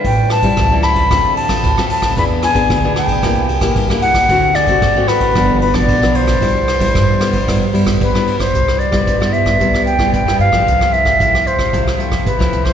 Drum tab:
RD |x-xxx-xxx-xxx-xx|x-xxx-xxx-xxx-xx|x-xxx-xxx-xxx-xx|x-xxx-xxx-xxx-xx|
HH |----------------|----------------|----------------|----------------|
SD |--r-r-r-r--r-r-r|--r-r-r-r--r-r-r|--r-r-r-r--r-r-r|--r-r-r-r--r-r-r|
BD |o--oo--oo--oo--o|o--oo--oo--oo--o|o--oo--oo--oo--o|o--oo--oo--oo--o|

RD |----------------|----------------|
HH |x-x-xxx-xxxxxxx-|x-x-xxxxx-xxxxx-|
SD |-r-r-r-r-r-r-r-r|-r-r-r-r-r-r-r-r|
BD |o--oo--oo--oo--o|o--oo--oo--oo--o|